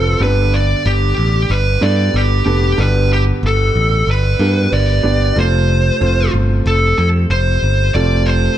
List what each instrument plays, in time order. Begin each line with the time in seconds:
Already playing: picked electric bass F1, upright piano C4 F4 A4 B4 C5, lead electric guitar A4
0.20 picked electric bass G1, upright piano G2 D3 B3 D4 G4 B4, lead electric guitar B4
0.54 lead electric guitar D5
0.86 picked electric bass G1, lead electric guitar G4
1.18 picked electric bass A1
1.50 picked electric bass G1, lead electric guitar B4
1.81 picked electric bass G2, upright piano B3 D4 G4 A4, lead electric guitar D5
2.14 picked electric bass G1, lead electric guitar G4
2.46 picked electric bass F1, upright piano B3 D4 G4 A4
2.78 picked electric bass G1, upright piano G2 D3 B3 D4 G4 B4, lead electric guitar B4
3.13 lead electric guitar G4
3.43 picked electric bass G1, lead electric guitar A4
3.76 picked electric bass A1
4.07 picked electric bass G1, lead electric guitar B4
4.39 picked electric bass G2, upright piano B3 D4 G4 A#4
4.47 upright piano B4
4.72 picked electric bass G1, lead electric guitar D5
5.03 picked electric bass G1, upright piano B3 D4 G4 D5
5.35 picked electric bass F1, upright piano C3 A3 C4 F4 A4, lead electric guitar C5
6.00 picked electric bass F1, upright piano A3 C4 F4 C5
6.34 picked electric bass G1
6.66 picked electric bass F1, lead electric guitar A4
6.98 picked electric bass F2, lead electric guitar A4
7.30 picked electric bass F1, lead electric guitar C5
7.63 picked electric bass G1
7.94 picked electric bass F1, upright piano C3 A3 C4 F4 A4, lead electric guitar D5
8.26 lead electric guitar C5